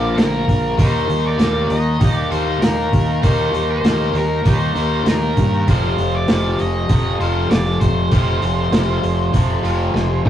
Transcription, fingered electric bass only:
Already playing: A#1
0.18 A#1
0.48 A#1
0.79 D#2
1.09 D#2
1.40 D#2
1.70 D#2
2.01 D#2
2.32 D#2
2.61 D#2
2.93 D#2
3.24 D#2
3.53 D#2
3.83 D#2
4.13 D#2
4.46 D#2
4.75 D#2
5.05 D#2
5.37 G2
5.68 F1
5.98 F1
6.29 F1
6.60 F1
6.90 F1
7.20 F1
7.50 F1
7.81 F1
8.12 F1
8.42 F1
8.72 F1
9.03 F1
9.34 F1
9.63 F1
9.93 F1
10.23 A1

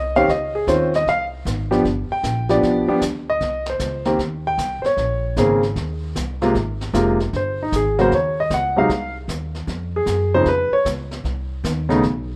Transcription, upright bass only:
Already playing: C2
0.28 C#2
0.67 D#2
1.06 C2
1.45 G#1
1.85 G1
2.10 muted upright bass stroke
2.23 A#1
2.62 B1
2.88 muted upright bass stroke
3.02 D2
3.41 C2
3.79 C#2
4.19 D#2
4.58 C2
4.83 muted upright bass stroke
4.97 A#1
5.36 G#1
5.76 D#2
6.16 C2
6.54 G#1
6.93 F1
7.33 G1
7.72 G#1
8.11 D#2
8.50 C#2
8.89 C2
9.28 D#2
9.67 F2
10.06 F#2
10.45 F2
10.71 muted upright bass stroke
10.85 C#2
11.24 C2
11.64 D#2
12.03 B1

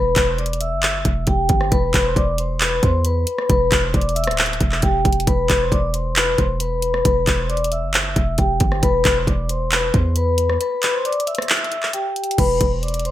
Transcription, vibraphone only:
Already playing: B4 B5
0.38 D5 D6
0.61 E5 E6
1.27 G4 G5
1.71 B4 B5
2.05 C5 C6
2.16 D5 D6
2.39 C5 C6
2.61 B4 B5
2.82 C5 C6
3.06 B4 B5
3.50 B4 B5
3.94 D5 D6
4.15 E5 E6
4.83 G4 G5
5.27 B4 B5
5.61 C5 C6
5.71 D5 D6
5.94 C5 C6
6.16 B4 B5
6.38 C5 C6
6.61 B4 B5
7.05 B4 B5
7.39 C5
7.49 D5 D6
7.72 E5 E6
8.39 G4 G5
8.83 B4 B5
9.17 C6
9.27 D5 D6
9.50 C5 C6
9.72 B4 B5
9.94 C5 C6
10.17 B4 B5
10.61 B4 B5
10.94 C5
11.05 D5 D6
11.27 E5 E6
11.94 G4 G5
12.38 B4 B5
12.82 D5 D6
13.05 C5 C6

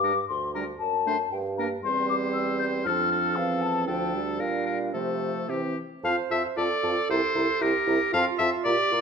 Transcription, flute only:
Already playing: D6
0.28 C6
0.54 A#5
0.79 A5
1.32 G5
1.58 A#5
1.83 C6
2.09 D6
2.33 E6
2.59 G6
2.85 F6
3.36 F5
3.62 A5
3.87 G5
4.39 F5
4.94 C5
6.04 A5
6.31 A5
6.57 A5
6.83 A5
7.10 A#5
7.36 A#5
7.61 A#5
7.88 A#5
8.14 A5
8.39 A5
8.65 A#5
8.93 A#5

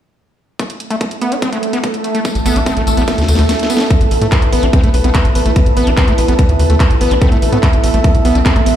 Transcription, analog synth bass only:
2.35 A1
2.46 A1
2.56 A1
2.77 A1
2.87 A1
2.97 A1
3.18 D2
3.28 D2
3.39 D2
4.01 A1
4.11 A1
4.21 A2
4.42 A1
4.53 A1
4.63 A1
4.84 B1
4.94 B1
5.04 B1
5.25 A1
5.35 A1
5.46 A1
5.66 A1
5.77 A1
5.87 A1
6.08 A1
6.18 A1
6.28 A1
6.49 D2
6.59 D2
6.70 D2
6.90 A1
7.01 A1
7.11 A1
7.32 A1
7.42 A1
7.53 A2
7.73 A1
7.84 A1
7.94 A1
8.15 B1
8.25 B1
8.35 B1
8.56 A1
8.66 A1

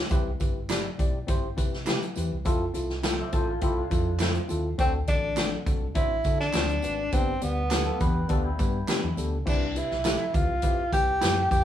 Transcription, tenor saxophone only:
4.80 C4
5.08 D4
5.95 E4
6.40 D4
7.14 C4
7.43 B3
9.48 D4
9.77 E4
10.35 F4
10.93 G4
11.51 G4

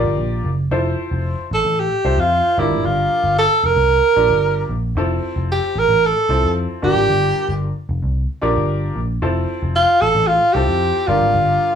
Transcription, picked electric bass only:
0.04 G1
0.18 A#1
0.44 F#1
0.71 F1
1.11 F1
1.51 A1
1.65 A1
2.05 C2
2.17 F2
2.58 G1
2.71 G#1
2.84 G1
3.24 G1
3.63 F1
3.76 C2
4.17 A#1
4.29 G1
4.69 A#1
4.95 F1
5.36 F1
5.76 A1
5.89 A1
6.29 C2
6.43 F2
6.83 G1
6.96 G#1
7.10 G1
7.49 G1
7.89 F1
8.03 C2
8.43 A#1
8.57 G1
8.96 A#1
9.22 F1
9.62 F1
10.02 A1
10.15 A1
10.55 C2
10.68 F2
11.08 G1
11.21 G#1
11.34 G1

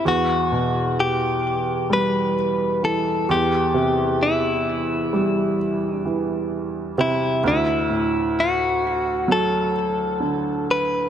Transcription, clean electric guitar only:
0.08 F#4
1.00 G4
1.93 B4
2.85 A4
3.31 G4
4.23 E4
5.96 D4
7.01 E4
7.48 E4
8.40 F#4
9.32 A4
10.71 B4

